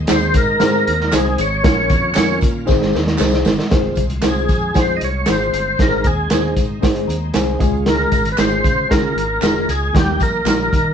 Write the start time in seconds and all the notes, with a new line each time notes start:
Already playing: G#3 C4 D#4
0.07 D#2 C4 D#4 G#4 C5, snare, clap, closed hi-hat, tambourine
0.12 C5
0.34 G#2 A#4, kick, closed hi-hat, tambourine
0.59 G#2 C4 D#4 G#4 C5, snare, closed hi-hat, tambourine
0.87 D#2, closed hi-hat
1.00 snare
1.12 C2 C4 D#4 G#4 C5, snare, clap, closed hi-hat, tambourine
1.38 G#1 C#5, closed hi-hat, tambourine
1.63 A#1 A#3 C#4 F4 A#4 C#5, kick, snare, closed hi-hat
1.90 F2, kick, closed hi-hat, tambourine
2.15 F2 C#4 F4 A#4 C#5, snare, clap, closed hi-hat, tambourine
2.41 A#2, kick, closed hi-hat, tambourine
2.66 G#1 G#3 C4 D#4 G#4 C5, kick, snare, tambourine
2.82 snare
2.93 D#2, snare, tambourine
3.07 snare
3.18 C2 C4 D#4 G#4 C5, snare, clap, tambourine
3.33 snare
3.45 G1, snare, tambourine
3.59 snare
3.70 F1 G#3 C4 F4 G#4 C5, kick, snare, closed hi-hat, tambourine
3.95 C2, kick, closed hi-hat, tambourine
4.10 closed hi-hat
4.21 C2 C4 F4 G#4 C5, snare, clap, closed hi-hat, tambourine
4.29 G#4
4.48 F2, kick, closed hi-hat, tambourine
4.74 F2 C4 F4 G#4 C5, kick, snare, closed hi-hat, tambourine
4.79 C5
4.96 D#5
5.01 C2 C#5, closed hi-hat
5.26 G#1 C4 F4 G#4 C5, snare, clap, closed hi-hat, tambourine
5.30 C5
5.54 G1, closed hi-hat, tambourine
5.78 G#1 C4 D#4 G#4 A#4 C5, kick, snare, closed hi-hat, tambourine
6.04 D#2 G#4, kick, closed hi-hat, tambourine
6.30 D#2 C4 D#4 G#4 C5, snare, clap, closed hi-hat, tambourine
6.57 G#2, kick, closed hi-hat, tambourine
6.81 G#2 C4 D#4 G#4 C5, kick, snare, closed hi-hat, tambourine
6.95 closed hi-hat
7.07 D#2 A#5, closed hi-hat, tambourine
7.33 C2 C4 D#4 G#4 C5 G#5, snare, clap, closed hi-hat, tambourine
7.59 C#2 G#3 C#4 F4 G#4 F5, kick, closed hi-hat, tambourine
7.86 A#4, snare, closed hi-hat
8.12 G#1, kick, closed hi-hat, tambourine
8.25 closed hi-hat
8.32 B4
8.37 G#1 G#3 C#4 F4 G#4 C5, snare, clap, closed hi-hat, tambourine
8.64 C#3, kick, closed hi-hat, tambourine
8.89 C#3 G#3 C#4 F4 G#4 A#4, kick, snare, closed hi-hat, tambourine
9.15 G#1, closed hi-hat
9.41 F1 G#3 C#4 F4 G#4, snare, clap, closed hi-hat, tambourine
9.68 C#2 G#4, closed hi-hat, tambourine
9.93 D#2 G3 A#3 D#4 G4, kick, snare, closed hi-hat, tambourine
10.20 A#1 A#4, kick, closed hi-hat, tambourine
10.45 A#1 G3 A#3 D#4 G4, snare, clap, closed hi-hat, tambourine
10.72 D#3, kick, closed hi-hat, tambourine